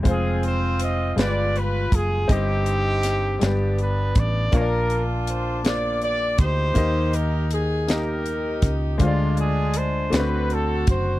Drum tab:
HH |xxxxxx|xxxxxx|xxxxxx|xxxxxx|
SD |---o--|--oo--|---o--|---o--|
BD |o----o|o----o|o----o|o----o|

HH |xxxxxx|
SD |---o--|
BD |o----o|